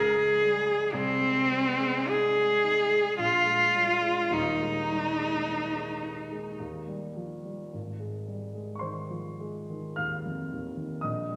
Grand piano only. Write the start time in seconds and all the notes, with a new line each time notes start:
Already playing: C#2
0.16 G#3
0.42 G3
0.67 G#3
0.93 C2
1.21 G#3
1.50 G3
1.80 G#3
2.09 D#4
2.36 G#3
2.64 D#4
2.90 G#3
3.18 A#1
3.46 G#3
3.74 G3
4.02 G#3
4.29 D#1 D#2
4.60 G#3
4.89 G3
5.19 G#3
5.47 D#4
5.76 G#3
6.03 D#4
6.32 G#3
6.60 D#2
6.87 G3
7.17 F3
7.45 G3
7.73 G#1
8.00 G#3
8.28 G3
8.55 G#3
8.75 C6 C#6
8.81 D#3 C5
9.10 F3
9.40 G#3
9.70 D#3
9.96 D#2 F5 F6
10.25 F2
10.52 D#2
10.77 D#3
11.01 A#1 D#5 D#6
11.29 G3